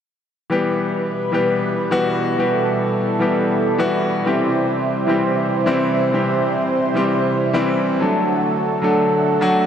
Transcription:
0.50 4.22 B2 medium
0.50 1.30 E3 medium
0.50 1.30 G3 medium
0.50 7.97 G3 medium
0.50 1.30 B3 medium
0.50 7.97 E4 medium
0.50 1.31 G4 medium
0.50 2.37 B4 loud
1.32 1.88 E3 medium
1.32 1.89 G3 medium
1.32 1.89 B3 medium
1.32 1.89 G4 medium
1.91 2.35 E3 medium
1.91 2.36 G3 medium
1.91 2.36 B3 medium
1.91 2.36 F#4 loud
2.37 3.17 E3 medium
2.37 3.17 G3 medium
2.37 3.18 B3 medium
2.37 3.18 G4 medium
2.37 4.24 A4 medium
3.19 3.76 E3 medium
3.19 3.76 G3 medium
3.19 3.76 B3 medium
3.19 3.77 G4 medium
3.78 4.23 E3 medium
3.78 4.23 G3 medium
3.78 4.23 B3 medium
3.78 4.23 F#4 loud
4.25 7.97 C3 medium
4.25 5.05 E3 medium
4.25 5.05 G3 medium
4.25 5.05 C4 medium
4.25 5.06 G4 medium
4.25 7.97 C5 medium
5.07 5.63 E3 medium
5.07 5.64 G3 medium
5.07 5.64 C4 medium
5.07 5.64 G4 medium
5.66 6.10 E3 medium
5.66 6.11 G3 medium
5.66 6.11 C4 medium
5.66 6.11 E4 loud
6.12 6.92 E3 medium
6.12 6.92 G3 medium
6.12 6.93 C4 medium
6.12 6.93 G4 medium
6.94 7.51 E3 medium
6.94 7.51 G3 medium
6.94 7.51 C4 medium
6.94 7.52 G4 medium
7.53 7.98 E3 medium
7.53 7.98 G3 medium
7.53 7.98 C4 medium
7.53 7.98 E4 loud
8.00 9.66 D3 medium
8.00 8.80 F#3 medium
8.00 8.80 A3 medium
8.00 9.66 A3 medium
8.00 8.80 D4 medium
8.00 9.66 F#4 medium
8.00 9.66 A4 medium
8.00 8.81 A4 medium
8.82 9.38 F#3 medium
8.82 9.39 A3 medium
8.82 9.39 D4 medium
8.82 9.39 A4 medium
9.41 9.66 F#3 medium
9.41 9.66 A3 medium
9.41 9.66 D4 medium
9.41 9.66 F#4 loud

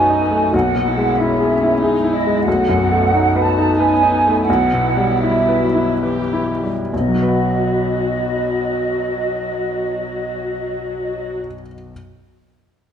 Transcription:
0.00 0.49 B1 soft
0.00 0.55 F#2 soft
0.00 0.31 A3 soft
0.00 0.19 B3 soft
0.00 0.10 D#4 soft
0.00 0.52 D#4 soft
0.00 0.56 F#4 soft
0.00 0.54 G#5 soft
0.10 0.45 D#4 soft
0.20 0.52 B3 soft
0.31 0.53 A3 soft
0.53 2.42 B1 soft
0.53 1.79 A#3 soft
0.53 0.86 F#4 soft
0.53 1.18 F#5 soft
0.75 1.10 B2 soft
0.86 1.18 E4 soft
0.97 1.31 G#3 soft
1.17 1.81 C#4 soft
1.17 1.53 E4 soft
1.17 1.81 E5 soft
1.40 1.73 G#4 soft
1.63 1.95 E4 soft
1.80 2.46 G#3 soft
1.80 2.13 D#4 soft
1.80 2.16 G#4 soft
2.04 2.38 E4 soft
2.12 2.46 E4 soft
2.12 2.43 D#5 soft
2.27 2.47 G#3 soft
2.44 4.44 B1 soft
2.44 2.79 A3 soft
2.44 3.10 F#4 soft
2.44 3.44 F#5 medium
2.69 3.03 F#2 soft
2.78 3.11 B3 soft
2.92 3.26 A3 soft
3.10 3.43 A3 soft
3.10 3.48 D#4 soft
3.10 3.77 F#4 soft
3.36 3.71 B4 soft
3.43 3.77 A3 soft
3.43 3.78 A5 soft
3.58 3.93 D#4 soft
3.77 4.47 B3 soft
3.77 4.47 D#4 soft
3.77 4.16 B4 soft
3.77 4.48 G#5 medium
4.03 4.39 D#4 soft
4.28 4.49 A3 soft
4.44 5.20 B3 soft
4.44 5.99 E4 soft
4.44 5.18 F#5 medium
4.49 6.89 B1 soft
4.73 5.12 B2 soft
4.97 5.37 G3 soft
5.20 5.61 G3 soft
5.20 5.64 E4 soft
5.20 6.02 E5 soft
5.49 5.91 B4 soft
5.61 6.01 F#3 soft
5.75 6.20 E4 soft
6.03 6.66 E3 soft
6.03 6.66 G4 soft
6.03 6.51 B4 soft
6.33 6.81 E4 soft
6.64 6.92 G3 soft
6.92 11.38 B1 soft
6.92 11.37 F#3 soft
6.92 11.37 F#4 soft
6.92 11.37 D#5 soft
7.00 11.45 B2 soft
7.08 11.53 F#3 soft
7.14 11.59 F#4 soft
7.22 11.67 B4 soft
7.29 11.74 F#5 soft

